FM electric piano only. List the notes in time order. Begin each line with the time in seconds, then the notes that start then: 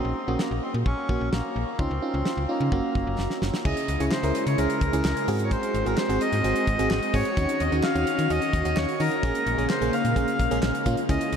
Already playing: A#3 C#4 F#4
0.28 A#3 C#4 F#4
1.09 A#3 C#4 F#4
1.79 C#4 D#4 F4
2.02 C#4 D#4 F4
2.49 C#4 D#4 F4
2.72 A#3 C#4 F#4
3.65 C#4 E4 G#4
4.00 C#4 E4 G#4
4.24 C#4 E4 A#4
4.58 C#4 E4 G#4
4.93 C#4 E4 G#4
5.28 C4 F#4 G#4
5.86 C4 F#4 G#4
6.09 C4 F#4 G#4
6.44 C4 F#4 G#4
6.79 C4 F#4 G#4
7.14 C4 F#4 G#4
7.37 C#4 D#4 F#4
7.72 C#4 D#4 F#4
7.95 C#4 D#4 F#4
8.30 C#4 D#4 F#4
8.65 C#4 D#4 F#4
9.00 C#4 D#4 F#4
9.23 A#3 C#4 G#4
9.58 A#3 C#4 G#4
9.81 A#3 C#4 G#4
10.16 A#3 C#4 G#4
10.51 A#3 C#4 G#4
10.86 A#3 C#4 F4
11.09 C#4 E4 G#4